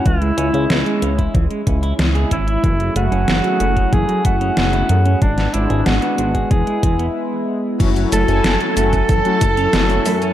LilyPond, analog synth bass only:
\new Staff \with { instrumentName = "Analog synth bass" } { \clef bass \time 4/4 \key fis \minor \tempo 4 = 93 cis,8 cis,16 cis,16 cis,16 r16 cis,8 cis,16 r16 cis,8 cis,8 gis,,8 | fis,,8 fis,,16 fis,,16 fis,,16 r16 fis,,8 fis,,16 r16 fis,,8 fis,,8 fis,8 | gis,,8 gis,,16 gis,,16 gis,,16 r16 gis,,8 e,,16 r16 e,,8 r4 | fis,,8 fis,,16 fis,,16 fis,,16 r16 fis,,8 fis,,16 r16 fis,,8 fis,,8 fis,8 | }